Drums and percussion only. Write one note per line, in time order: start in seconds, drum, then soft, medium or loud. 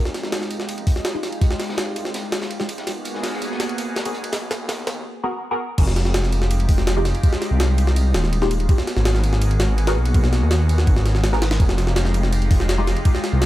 0.05 snare medium
0.14 snare soft
0.14 closed hi-hat medium
0.14 ride medium
0.23 snare soft
0.32 snare loud
0.32 open hi-hat medium
0.32 ride medium
0.42 snare soft
0.51 closed hi-hat medium
0.51 ride medium
0.60 snare soft
0.69 closed hi-hat medium
0.69 ride medium
0.78 ride soft
0.87 kick medium
0.87 closed hi-hat medium
0.87 open hi-hat medium
0.96 snare soft
1.05 snare loud
1.05 closed hi-hat medium
1.05 ride medium
1.23 snare medium
1.23 closed hi-hat medium
1.23 ride medium
1.32 ride soft
1.42 kick loud
1.42 closed hi-hat medium
1.42 ride medium
1.51 snare medium
1.60 snare medium
1.60 snare loud
1.60 open hi-hat medium
1.60 ride medium
1.69 snare loud
1.69 open hi-hat medium
1.77 snare loud
1.77 closed hi-hat medium
1.77 ride medium
1.96 closed hi-hat medium
1.96 ride medium
2.05 snare medium
2.14 snare loud
2.14 closed hi-hat medium
2.14 ride medium
2.32 snare loud
2.32 closed hi-hat medium
2.32 ride medium
2.42 snare loud
2.42 snare soft
2.42 closed hi-hat medium
2.51 ride medium
2.60 snare soft
2.60 closed hi-hat medium
2.69 closed hi-hat medium
2.69 ride medium
2.78 snare medium
2.78 ride soft
2.87 snare soft
2.87 closed hi-hat medium
2.87 ride medium
3.05 closed hi-hat medium
3.05 ride medium
3.15 snare soft
3.23 snare loud
3.23 snare medium
3.23 open hi-hat medium
3.23 ride medium
3.42 closed hi-hat medium
3.42 ride medium
3.51 snare medium
3.60 snare medium
3.60 closed hi-hat medium
3.60 ride medium
3.69 ride soft
3.78 closed hi-hat medium
3.78 ride medium
3.96 snare loud
3.96 snare medium
3.96 closed hi-hat medium
3.96 ride medium
4.05 ride medium
4.14 closed hi-hat medium
4.24 ride medium
4.32 snare medium
4.32 closed hi-hat medium
4.32 ride medium
4.51 snare medium
4.51 closed hi-hat medium
4.51 ride medium
4.69 snare loud
4.69 snare medium
4.69 closed hi-hat loud
4.69 ride medium
4.87 snare medium
4.87 closed hi-hat medium
4.87 ride medium
5.78 kick loud
5.78 crash medium
5.78 ride medium
5.88 snare medium
5.96 snare soft
5.96 ride medium
6.05 snare soft
6.14 snare loud
6.14 ride medium
6.24 snare soft
6.32 ride medium
6.42 snare soft
6.51 ride medium
6.60 ride soft
6.69 kick loud
6.69 open hi-hat medium
6.78 snare soft
6.87 snare loud
6.87 ride medium
7.05 snare medium
7.05 ride medium
7.15 ride soft
7.23 kick loud
7.23 ride medium
7.33 snare medium
7.42 snare medium
7.42 ride medium
7.60 snare loud
7.60 ride medium
7.78 ride medium
7.87 snare medium
7.96 ride medium
8.14 snare loud
8.14 ride medium
8.24 snare soft
8.33 ride medium
8.42 snare soft
8.51 ride medium
8.60 ride soft
8.69 kick loud
8.69 ride medium
8.78 snare medium
8.87 snare soft
8.87 ride medium
8.97 snare soft
9.05 snare loud
9.05 ride medium
9.15 snare soft
9.24 ride medium
9.33 snare soft
9.42 ride medium
9.51 ride soft
9.60 snare loud
9.60 ride medium
9.78 ride medium
9.87 snare loud
9.87 ride medium
10.05 ride medium
10.14 kick loud
10.14 ride medium
10.24 snare medium
10.33 snare medium
10.33 ride medium
10.51 snare loud
10.51 ride medium
10.69 ride medium
10.78 snare medium
10.87 kick loud
10.87 ride medium
10.96 snare medium
11.06 snare soft
11.06 ride medium
11.15 snare soft
11.24 snare loud
11.24 ride medium
11.33 snare soft
11.42 snare loud
11.42 ride medium
11.51 snare loud
11.51 ride medium
11.60 kick loud
11.60 ride medium
11.69 snare medium
11.78 snare soft
11.78 ride medium
11.87 snare soft
11.96 snare loud
11.96 ride medium
12.05 snare soft
12.14 ride medium
12.23 snare soft
12.32 ride medium
12.42 ride soft
12.51 kick loud
12.51 open hi-hat medium
12.60 snare soft
12.69 snare loud
12.69 ride medium
12.87 snare medium
12.87 ride medium
12.97 ride soft
13.05 kick loud
13.05 ride medium
13.15 snare medium
13.24 snare medium
13.24 ride medium
13.42 snare loud
13.42 ride medium